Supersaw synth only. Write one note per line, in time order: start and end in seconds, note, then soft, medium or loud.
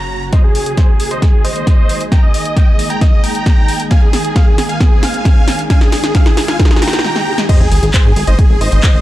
0.00 0.24 A#5 medium
0.33 0.43 C5 medium
0.33 0.43 D#5 loud
0.44 0.54 G#4 medium
0.55 0.65 G#4 medium
0.66 0.76 G#4 medium
0.77 0.87 G#4 medium
0.77 0.87 C5 medium
0.89 0.99 G#4 medium
1.00 1.10 G#4 medium
1.11 1.21 C5 medium
1.11 1.21 D#5 medium
1.22 1.32 G#4 medium
1.33 1.43 G#4 medium
1.45 2.03 C5 medium
1.45 2.03 D#5 medium
2.12 2.22 G5 medium
2.12 2.22 A#5 loud
2.23 2.33 D#5 medium
2.34 2.44 D#5 medium
2.45 2.55 D#5 medium
2.57 2.66 D#5 medium
2.57 2.66 G5 medium
2.68 2.78 D#5 medium
2.79 2.89 D#5 medium
2.90 3.00 G5 medium
2.90 3.00 A#5 medium
3.01 3.11 D#5 medium
3.12 3.22 D#5 medium
3.24 3.82 G5 medium
3.24 3.82 A#5 loud
3.91 4.01 F5 medium
3.91 4.01 G#5 loud
4.02 4.12 G#4 medium
4.13 4.23 G#4 medium
4.24 4.34 G#4 medium
4.36 4.46 G#4 medium
4.36 4.46 F5 medium
4.47 4.57 G#4 medium
4.58 4.68 G#4 medium
4.69 4.79 F5 medium
4.69 4.79 G#5 medium
4.80 4.90 G#4 medium
4.91 5.01 G#4 medium
5.03 5.61 F5 medium
5.03 5.61 G#5 loud
5.70 5.80 F5 medium
5.70 5.80 G#5 loud
5.81 5.91 G#4 medium
5.92 6.02 G#4 medium
6.04 6.13 G#4 medium
6.15 6.25 G#4 medium
6.15 6.25 F5 medium
6.26 6.36 G#4 medium
6.37 6.47 G#4 medium
6.48 6.58 F5 medium
6.48 6.58 G#5 loud
6.59 6.69 G#4 medium
6.71 6.81 G#4 medium
6.82 7.40 G5 medium
6.82 7.40 A#5 loud
7.49 7.59 C5 medium
7.49 7.59 D#5 loud
7.60 7.70 G#4 medium
7.71 7.81 G#4 medium
7.83 7.93 G#4 medium
7.94 8.04 G#4 medium
7.94 8.04 C5 medium
8.05 8.15 G#4 medium
8.16 8.26 G#4 medium
8.27 8.37 C5 medium
8.27 8.37 D#5 medium
8.39 8.49 G#4 medium
8.50 8.60 G#4 medium
8.61 9.01 C5 medium
8.61 9.01 D#5 loud